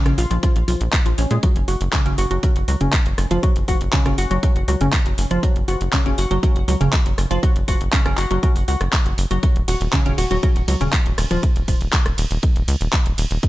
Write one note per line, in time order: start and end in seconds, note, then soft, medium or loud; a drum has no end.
0.06 0.14 A#1 medium
0.06 0.14 C#3 loud
0.06 0.14 C#4 medium
0.06 cross-stick medium
0.06 closed hi-hat soft
0.18 0.26 A#1 loud
0.18 0.26 F4 medium
0.18 0.26 F5 medium
0.18 open hi-hat loud
0.31 0.39 A#1 medium
0.31 0.36 F3 medium
0.31 0.36 F4 medium
0.31 closed hi-hat soft
0.43 0.55 F3 medium
0.43 0.55 F4 medium
0.43 kick loud
0.43 closed hi-hat loud
0.56 0.64 A#1 medium
0.56 closed hi-hat soft
0.68 0.76 B1 loud
0.68 0.76 F3 medium
0.68 0.76 F4 medium
0.68 open hi-hat loud
0.81 0.89 A#1 medium
0.81 closed hi-hat soft
0.93 kick loud
0.93 clap loud
0.93 closed hi-hat loud
1.06 1.14 A#1 medium
1.06 1.11 F3 medium
1.06 1.11 F4 medium
1.06 closed hi-hat soft
1.18 1.26 A#1 loud
1.18 1.30 C#4 medium
1.18 1.30 C#5 medium
1.18 open hi-hat loud
1.31 1.39 A#2 medium
1.31 1.39 G#3 medium
1.31 1.39 G#4 medium
1.31 closed hi-hat soft
1.43 1.55 F#3 medium
1.43 1.55 F#4 medium
1.43 kick loud
1.43 closed hi-hat loud
1.56 1.64 F#1 medium
1.56 closed hi-hat soft
1.68 1.76 F#1 loud
1.68 1.76 F#4 medium
1.68 1.76 F#5 medium
1.68 open hi-hat loud
1.81 1.89 F#1 loud
1.81 closed hi-hat soft
1.93 2.01 C#3 loud
1.93 2.01 C#4 medium
1.93 kick loud
1.93 clap loud
1.93 closed hi-hat loud
2.06 2.14 F#1 medium
2.06 2.14 C#3 loud
2.06 2.14 C#4 medium
2.06 closed hi-hat soft
2.18 2.26 F#1 loud
2.18 2.26 F#4 medium
2.18 2.26 F#5 medium
2.18 open hi-hat loud
2.31 2.39 F#1 medium
2.31 2.36 F#3 medium
2.31 2.36 F#4 medium
2.31 closed hi-hat soft
2.43 2.55 F#3 medium
2.43 2.55 F#4 medium
2.43 kick loud
2.43 closed hi-hat medium
2.56 2.64 F#1 medium
2.56 closed hi-hat soft
2.68 2.76 C#2 loud
2.68 2.73 F#3 medium
2.68 2.73 F#4 medium
2.68 open hi-hat loud
2.81 2.89 F#1 medium
2.81 2.89 C#3 medium
2.81 2.89 C#4 medium
2.81 closed hi-hat soft
2.93 kick loud
2.93 clap loud
2.93 closed hi-hat loud
3.06 3.14 F#1 medium
3.06 closed hi-hat soft
3.18 3.26 F#1 loud
3.18 cross-stick medium
3.18 open hi-hat loud
3.31 3.39 F#1 medium
3.31 3.39 F3 loud
3.31 3.39 F4 medium
3.31 closed hi-hat soft
3.43 3.55 F#3 medium
3.43 3.55 F#4 medium
3.43 kick loud
3.43 closed hi-hat loud
3.56 3.64 F#1 medium
3.56 closed hi-hat soft
3.68 3.76 F#1 loud
3.68 3.76 F#4 medium
3.68 3.76 F#5 medium
3.68 kick medium
3.68 open hi-hat loud
3.81 3.89 F#1 medium
3.81 closed hi-hat soft
3.93 4.01 C#3 loud
3.93 4.01 C#4 medium
3.93 kick loud
3.93 clap loud
3.93 closed hi-hat medium
4.06 4.14 F#1 medium
4.06 4.14 C#3 loud
4.06 4.14 C#4 medium
4.06 cross-stick medium
4.06 closed hi-hat soft
4.18 4.26 F#1 loud
4.18 4.26 F#4 medium
4.18 4.26 F#5 medium
4.18 open hi-hat loud
4.31 4.38 F#1 medium
4.31 4.36 F#3 medium
4.31 4.36 F#4 medium
4.31 closed hi-hat soft
4.43 4.55 F#3 medium
4.43 4.55 F#4 medium
4.43 kick loud
4.43 closed hi-hat medium
4.56 4.64 F#1 medium
4.56 closed hi-hat soft
4.68 4.76 C#2 loud
4.68 4.73 F#3 medium
4.68 4.73 F#4 medium
4.68 open hi-hat loud
4.81 4.88 F#1 medium
4.81 4.89 C#3 medium
4.81 4.89 C#4 medium
4.81 closed hi-hat soft
4.93 kick loud
4.93 clap loud
4.93 closed hi-hat loud
5.06 5.14 F#1 medium
5.06 closed hi-hat soft
5.18 5.26 F#1 loud
5.18 open hi-hat loud
5.31 5.39 F#1 medium
5.31 5.39 F3 loud
5.31 5.39 F4 medium
5.31 closed hi-hat soft
5.43 5.55 F#3 medium
5.43 5.55 F#4 medium
5.43 kick loud
5.43 closed hi-hat medium
5.56 5.64 F#1 medium
5.56 closed hi-hat soft
5.68 5.76 F#1 loud
5.68 5.76 F#4 medium
5.68 5.76 F#5 medium
5.68 open hi-hat loud
5.81 5.89 F#1 loud
5.81 closed hi-hat soft
5.93 6.01 C#3 loud
5.93 6.01 C#4 medium
5.93 kick loud
5.93 clap loud
5.93 closed hi-hat medium
6.06 6.14 F#1 medium
6.06 6.14 C#3 loud
6.06 6.14 C#4 medium
6.06 closed hi-hat soft
6.18 6.26 F#1 loud
6.18 6.26 F#4 medium
6.18 6.26 F#5 medium
6.18 open hi-hat loud
6.31 6.39 F#1 loud
6.31 6.36 F#3 medium
6.31 6.36 F#4 medium
6.31 closed hi-hat soft
6.43 6.55 F#3 medium
6.43 6.55 F#4 medium
6.43 kick loud
6.43 closed hi-hat medium
6.56 6.64 F#1 medium
6.56 closed hi-hat soft
6.68 6.76 C#2 loud
6.68 6.73 F#3 medium
6.68 6.73 F#4 medium
6.68 open hi-hat loud
6.81 6.89 F#1 medium
6.81 6.89 C#3 medium
6.81 6.89 C#4 medium
6.81 closed hi-hat soft
6.93 kick loud
6.93 clap loud
6.93 closed hi-hat medium
7.06 7.14 F#1 medium
7.06 closed hi-hat soft
7.18 7.26 F#1 loud
7.18 cross-stick medium
7.18 open hi-hat loud
7.31 7.39 F#1 medium
7.31 7.39 F3 loud
7.31 7.39 F4 medium
7.31 closed hi-hat soft
7.43 7.55 F#3 medium
7.43 7.55 F#4 medium
7.43 kick loud
7.43 closed hi-hat medium
7.56 7.64 F#1 medium
7.56 closed hi-hat soft
7.68 7.76 F#1 loud
7.68 7.76 F#4 medium
7.68 7.76 F#5 medium
7.68 kick medium
7.68 open hi-hat loud
7.81 7.89 F#1 medium
7.81 closed hi-hat soft
7.93 8.01 C#3 loud
7.93 8.01 C#4 medium
7.93 kick loud
7.93 clap loud
7.93 closed hi-hat medium
8.06 8.14 F#1 medium
8.06 8.14 C#3 loud
8.06 8.14 C#4 medium
8.06 cross-stick medium
8.06 closed hi-hat soft
8.18 8.26 F#1 loud
8.18 8.26 F#4 medium
8.18 8.26 F#5 medium
8.18 clap medium
8.18 open hi-hat loud
8.31 8.39 F#1 loud
8.31 8.36 F#3 medium
8.31 8.36 F#4 medium
8.31 closed hi-hat soft
8.43 8.55 F#3 medium
8.43 8.55 F#4 medium
8.43 kick loud
8.43 closed hi-hat medium
8.56 8.64 F#1 medium
8.56 open hi-hat medium
8.68 8.76 C#2 loud
8.68 8.73 F#4 medium
8.68 8.73 F#5 medium
8.68 open hi-hat loud
8.81 8.89 F#1 medium
8.81 cross-stick medium
8.81 closed hi-hat soft
8.93 kick loud
8.93 clap loud
8.93 closed hi-hat medium
9.06 9.13 F#1 medium
9.06 closed hi-hat soft
9.18 9.26 F#1 loud
9.18 open hi-hat loud
9.31 9.39 F#1 medium
9.31 9.39 F#3 medium
9.31 9.39 F#4 medium
9.31 closed hi-hat soft
9.43 9.55 F#3 medium
9.43 9.55 F#4 medium
9.43 kick loud
9.43 closed hi-hat medium
9.56 9.64 D#1 medium
9.56 closed hi-hat soft
9.68 9.76 D#1 loud
9.68 9.76 F#4 medium
9.68 9.76 F#5 medium
9.68 open hi-hat loud
9.68 ride medium
9.81 9.89 D#1 loud
9.81 closed hi-hat soft
9.93 10.01 C#3 loud
9.93 10.01 C#4 medium
9.93 kick loud
9.93 clap loud
9.93 closed hi-hat medium
10.06 10.14 D#1 medium
10.06 10.14 C#3 loud
10.06 10.14 C#4 medium
10.06 closed hi-hat soft
10.18 10.26 D#1 loud
10.18 10.26 F#4 medium
10.18 10.26 F#5 medium
10.18 open hi-hat loud
10.18 ride medium
10.31 10.39 D#1 loud
10.31 10.36 F#3 medium
10.31 10.36 F#4 medium
10.31 closed hi-hat soft
10.43 10.55 F#3 medium
10.43 10.55 F#4 medium
10.43 kick loud
10.43 closed hi-hat medium
10.56 10.63 D#1 medium
10.56 closed hi-hat soft
10.68 10.76 C#2 loud
10.68 10.73 F#3 medium
10.68 10.73 F#4 medium
10.68 open hi-hat loud
10.68 ride medium
10.81 10.89 D#1 loud
10.81 10.89 C#3 medium
10.81 10.89 C#4 medium
10.81 closed hi-hat soft
10.93 kick loud
10.93 clap loud
10.93 closed hi-hat medium
11.06 11.14 D#1 medium
11.06 closed hi-hat soft
11.18 11.26 D#1 loud
11.18 cross-stick medium
11.18 open hi-hat loud
11.18 ride medium
11.31 11.39 D#1 medium
11.31 11.39 F3 loud
11.31 11.39 F4 medium
11.31 closed hi-hat soft
11.43 kick loud
11.43 closed hi-hat loud
11.56 11.64 D#1 medium
11.56 closed hi-hat soft
11.68 11.76 D#1 loud
11.68 kick medium
11.68 open hi-hat loud
11.68 ride medium
11.81 11.89 D#1 loud
11.81 closed hi-hat soft
11.93 kick loud
11.93 clap loud
11.93 closed hi-hat medium
12.06 12.14 D#1 medium
12.06 cross-stick medium
12.06 closed hi-hat soft
12.18 12.26 D#1 loud
12.18 open hi-hat loud
12.18 ride medium
12.31 12.39 D#1 loud
12.31 closed hi-hat soft
12.43 kick loud
12.43 closed hi-hat medium
12.56 12.64 D#1 medium
12.56 closed hi-hat soft
12.68 12.76 C#2 loud
12.68 open hi-hat loud
12.68 ride medium
12.81 12.89 D#1 loud
12.81 closed hi-hat soft
12.93 kick loud
12.93 clap loud
12.93 closed hi-hat loud
13.06 13.14 D#1 medium
13.06 closed hi-hat soft
13.18 13.26 D#1 loud
13.18 open hi-hat loud
13.18 ride medium
13.31 13.39 D#1 medium
13.31 closed hi-hat soft
13.43 kick loud
13.43 closed hi-hat loud